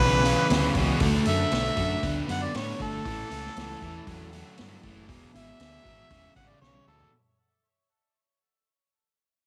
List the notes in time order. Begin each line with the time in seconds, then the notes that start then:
Already playing: B3 E4 G#4 B4
0.00 B1 E2 C#3
0.24 E2 C#3, open hi-hat
0.50 D2 E2 C#3, snare, open hi-hat
0.75 C#2 E2 B2, kick, open hi-hat
0.99 D2 D3 A3 D4 F#4 A4, kick, open hi-hat
1.25 F#2 D3 A3 E5, open hi-hat
1.52 B1 D3 A3, snare, open hi-hat
1.76 F#2 D3 A3, kick, open hi-hat
2.03 D2 D3 B3, kick, open hi-hat
2.27 F#2 D3 B3 F#5, open hi-hat
2.42 D5
2.54 A2 D3 B3 C#5, snare, open hi-hat
2.79 G1 D3 A3 A4, kick, open hi-hat
3.04 A1 A2 E3 A3 C#4 E4 A4, kick, open hi-hat
3.30 C#2 A2 E3, open hi-hat
3.46 snare
3.56 C#2 A2 E3, snare, open hi-hat
3.82 E2 A2 E3, kick, open hi-hat
4.07 E2 A2 F#3, kick, open hi-hat
4.32 A2 F#3, open hi-hat
4.57 G2 A2 F#3, snare, open hi-hat
4.83 F#1 A2 E3, kick, open hi-hat
5.08 E1 E2 B2 G#3 G#4, kick, open hi-hat
5.12 B3 E4
5.35 G#1 E2 B2 E5, open hi-hat
5.60 D2 E2 B2, snare, open hi-hat
5.83 G#1 E2 B2, kick, open hi-hat
6.10 E1 E2 C#3, kick, open hi-hat
6.36 G#1 E2 C#3 F#5, kick, open hi-hat
6.48 D5
6.61 B1 E2 C#3 C#5, snare
6.75 high tom
6.87 D2 E2 B2 A4, mid tom
7.00 floor tom